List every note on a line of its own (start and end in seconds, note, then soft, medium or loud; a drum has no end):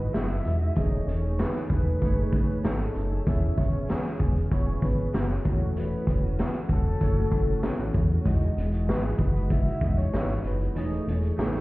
0.00 0.80 G#3 medium
0.00 0.13 G#3 soft
0.00 0.14 D#4 soft
0.00 0.79 E4 medium
0.00 0.15 F#4 soft
0.00 0.80 F#4 medium
0.00 0.13 B4 medium
0.00 0.79 D#5 medium
0.13 0.41 F#1 medium
0.13 0.30 E3 medium
0.13 0.30 G#3 medium
0.13 0.31 D#4 medium
0.13 0.28 F#4 medium
0.13 0.79 E5 loud
0.13 snare medium
0.13 closed hi-hat medium
0.30 0.61 G#3 soft
0.30 0.58 F#4 soft
0.45 0.71 E1 medium
0.45 closed hi-hat medium
0.59 0.77 G#3 soft
0.59 0.76 D#4 soft
0.59 0.76 F#4 soft
0.75 1.02 E1 loud
0.75 1.23 E3 medium
0.75 1.58 A3 medium
0.75 1.24 A3 medium
0.75 1.23 D#4 medium
0.75 1.59 D#4 medium
0.75 1.21 G#4 medium
0.75 1.59 G#4 medium
0.75 1.09 D#5 loud
0.75 kick loud
0.75 closed hi-hat medium
0.79 1.60 C#5 medium
1.07 1.46 E1 medium
1.07 1.38 C#5 medium
1.07 closed hi-hat medium
1.22 1.38 A3 soft
1.22 1.39 D#4 soft
1.22 1.39 G#4 medium
1.38 1.67 E3 medium
1.38 1.69 A3 medium
1.38 1.70 D#4 medium
1.38 1.71 G#4 medium
1.38 1.68 B4 medium
1.38 snare loud
1.38 closed hi-hat medium
1.55 snare soft
1.69 1.95 E1 medium
1.69 2.17 E3 soft
1.69 2.17 A3 medium
1.69 2.17 D#4 medium
1.69 2.15 G#4 medium
1.69 2.61 B4 loud
1.69 kick medium
1.69 closed hi-hat medium
2.02 2.27 F#1 medium
2.02 2.83 A3 medium
2.02 2.84 D#4 medium
2.02 2.84 G#4 medium
2.02 2.85 C#5 medium
2.02 kick medium
2.02 closed hi-hat medium
2.16 2.32 A3 soft
2.16 2.34 D#4 soft
2.16 2.32 G#4 medium
2.32 2.58 A1 medium
2.32 2.48 E3 medium
2.32 2.49 A3 medium
2.32 2.47 D#4 medium
2.32 2.45 G#4 medium
2.32 kick medium
2.32 closed hi-hat medium
2.47 2.63 A3 soft
2.47 2.63 D#4 soft
2.47 2.63 G#4 soft
2.63 2.90 G#1 medium
2.63 2.79 E3 medium
2.63 2.80 A3 medium
2.63 2.79 D#4 medium
2.63 2.81 G#4 medium
2.63 3.29 A4 medium
2.63 snare loud
2.63 closed hi-hat loud
2.80 3.12 A3 soft
2.80 3.12 D#4 soft
2.95 3.21 F#1 medium
2.95 closed hi-hat medium
3.11 3.27 A3 soft
3.11 3.28 D#4 soft
3.11 3.27 G#4 soft
3.26 3.52 E1 loud
3.26 3.73 E3 medium
3.26 4.08 B3 medium
3.26 3.74 B3 medium
3.26 3.74 C#4 medium
3.26 4.08 E4 medium
3.26 4.09 G#4 medium
3.26 3.72 G#4 medium
3.26 4.09 C#5 medium
3.26 3.59 E5 loud
3.26 kick loud
3.26 closed hi-hat medium
3.57 3.95 E1 medium
3.57 3.88 C#5 medium
3.57 kick medium
3.57 closed hi-hat medium
3.73 3.87 B3 soft
3.73 3.89 C#4 soft
3.73 3.89 G#4 medium
3.88 4.17 E3 medium
3.88 4.18 B3 medium
3.88 4.20 C#4 medium
3.88 4.48 G#4 medium
3.88 4.20 G#4 medium
3.88 snare loud
3.88 closed hi-hat medium
4.06 snare soft
4.18 4.45 E1 medium
4.18 4.66 E3 medium
4.18 4.67 B3 soft
4.18 4.67 C#4 medium
4.18 4.66 G#4 medium
4.18 kick medium
4.18 closed hi-hat medium
4.36 closed hi-hat soft
4.51 4.77 E1 loud
4.51 5.33 B3 medium
4.51 5.33 E4 medium
4.51 5.33 G#4 medium
4.51 4.81 C#5 medium
4.51 5.34 C#5 medium
4.51 kick medium
4.51 closed hi-hat medium
4.67 4.82 B3 soft
4.67 4.83 C#4 soft
4.67 4.83 G#4 medium
4.82 5.08 G#1 medium
4.82 5.12 E3 medium
4.82 5.13 B3 medium
4.82 5.13 C#4 medium
4.82 5.14 G#4 medium
4.82 5.16 B4 medium
4.82 kick medium
4.82 closed hi-hat medium
5.13 5.39 F#1 medium
5.13 5.29 E3 medium
5.13 5.30 B3 medium
5.13 5.29 C#4 medium
5.13 5.77 F#4 medium
5.13 5.28 G#4 medium
5.13 snare loud
5.13 closed hi-hat medium
5.29 5.44 B3 soft
5.29 5.45 C#4 soft
5.29 5.45 G#4 soft
5.44 5.95 E1 medium
5.44 6.26 E3 medium
5.44 6.44 A3 medium
5.44 6.23 A3 medium
5.44 6.23 C#4 medium
5.44 6.45 E4 medium
5.44 6.45 F#4 medium
5.44 6.22 F#4 medium
5.44 5.52 B4 medium
5.44 kick medium
5.44 closed hi-hat medium
5.53 6.49 C#5 medium
5.77 6.36 B4 medium
5.77 closed hi-hat medium
6.07 6.45 E1 medium
6.07 kick medium
6.07 closed hi-hat medium
6.23 6.39 A3 soft
6.23 6.39 C#4 soft
6.23 6.39 F#4 soft
6.39 6.69 E3 medium
6.39 6.70 A3 medium
6.39 6.71 C#4 medium
6.39 6.71 F#4 medium
6.39 snare loud
6.39 closed hi-hat medium
6.69 6.95 E1 loud
6.69 7.17 E3 soft
6.69 7.18 A3 soft
6.69 7.92 A4 loud
6.69 kick medium
6.69 closed hi-hat medium
6.73 7.19 C#4 soft
6.73 7.17 F#4 medium
6.99 7.26 F#1 loud
6.99 7.82 A3 medium
6.99 7.82 E4 medium
6.99 7.82 F#4 medium
6.99 7.83 C#5 medium
6.99 kick medium
6.99 closed hi-hat medium
7.18 7.33 A3 soft
7.18 7.34 C#4 soft
7.18 7.33 F#4 soft
7.32 7.57 F#1 medium
7.32 7.48 E3 medium
7.32 7.49 A3 medium
7.32 7.49 C#4 medium
7.32 kick medium
7.32 closed hi-hat medium
7.36 7.48 F#4 medium
7.49 7.63 A3 soft
7.49 7.64 C#4 soft
7.49 7.64 F#4 medium
7.63 7.70 A1 soft
7.63 8.10 E3 medium
7.63 8.11 A3 medium
7.63 8.10 C#4 medium
7.63 8.08 F#4 medium
7.63 snare loud
7.63 closed hi-hat medium
7.79 7.92 A1 medium
7.94 8.20 E2 medium
7.94 kick medium
7.94 closed hi-hat medium
8.09 8.26 A3 soft
8.09 8.26 C#4 soft
8.09 8.25 F#4 medium
8.24 8.51 E1 loud
8.24 8.86 E3 medium
8.24 8.66 G#3 medium
8.24 8.87 G#3 medium
8.24 8.88 D#4 medium
8.24 8.66 E4 medium
8.24 8.66 F#4 medium
8.24 8.89 F#4 medium
8.24 8.67 D#5 medium
8.24 kick medium
8.24 closed hi-hat medium
8.41 closed hi-hat soft
8.57 8.90 E1 medium
8.57 closed hi-hat medium
8.72 closed hi-hat medium
8.87 9.14 G#1 medium
8.87 9.17 E3 medium
8.87 9.48 G#3 medium
8.87 9.18 G#3 medium
8.87 9.19 D#4 medium
8.87 9.49 E4 medium
8.87 9.49 F#4 medium
8.87 9.20 F#4 medium
8.87 9.05 B4 medium
8.87 9.50 D#5 medium
8.87 snare loud
9.03 9.19 G#4 medium
9.18 9.69 F#1 medium
9.18 9.34 E3 soft
9.18 9.35 G#3 medium
9.18 9.35 D#4 soft
9.18 9.33 F#4 medium
9.18 9.53 B4 medium
9.18 kick medium
9.18 closed hi-hat medium
9.34 9.68 G#3 soft
9.34 9.67 D#4 soft
9.34 9.65 F#4 soft
9.34 closed hi-hat soft
9.50 9.97 E5 loud
9.50 kick medium
9.50 closed hi-hat medium
9.66 9.82 G#3 soft
9.66 9.83 D#4 soft
9.66 9.82 F#4 medium
9.66 closed hi-hat soft
9.80 10.07 E1 medium
9.80 10.12 E3 medium
9.80 10.42 G#3 medium
9.80 10.13 G#3 medium
9.80 10.42 E4 medium
9.80 10.43 F#4 soft
9.80 10.43 D#5 medium
9.80 kick medium
9.80 closed hi-hat medium
9.85 10.14 D#4 medium
9.85 10.15 F#4 medium
9.97 10.48 C#5 loud
9.97 closed hi-hat soft
10.13 10.38 G#1 medium
10.13 10.44 E3 medium
10.13 10.45 G#3 medium
10.13 10.45 D#4 medium
10.13 10.46 F#4 medium
10.13 snare loud
10.30 closed hi-hat soft
10.44 10.69 F#1 medium
10.44 10.60 E3 medium
10.44 10.61 G#3 medium
10.44 10.60 D#4 medium
10.44 10.58 F#4 medium
10.44 10.77 B4 medium
10.44 closed hi-hat medium
10.59 10.75 G#3 soft
10.59 10.75 D#4 soft
10.59 10.75 F#4 soft
10.59 closed hi-hat soft
10.74 11.00 E1 medium
10.74 11.37 E3 medium
10.74 11.16 A3 medium
10.74 11.37 A3 medium
10.74 11.16 D#4 medium
10.74 11.38 D#4 medium
10.74 11.17 G#4 medium
10.74 11.39 G#4 medium
10.74 11.17 C#5 medium
10.74 11.06 D#5 loud
10.74 closed hi-hat medium
10.92 closed hi-hat soft
11.07 11.32 E1 medium
11.07 closed hi-hat medium
11.22 closed hi-hat soft
11.36 11.61 A1 medium
11.36 11.61 E3 medium
11.36 11.61 A3 medium
11.36 11.61 D#4 medium
11.36 11.61 G#4 medium
11.36 11.61 C#5 loud
11.36 snare loud
11.55 snare soft